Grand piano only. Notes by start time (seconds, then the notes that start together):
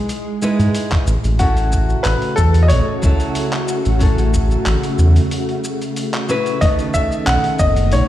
1.39 F#4
2.03 B4
2.36 A4
2.63 D#5
2.68 C#5
6.61 D#5
6.94 E5
7.27 F#5
7.59 D#5
7.93 C#5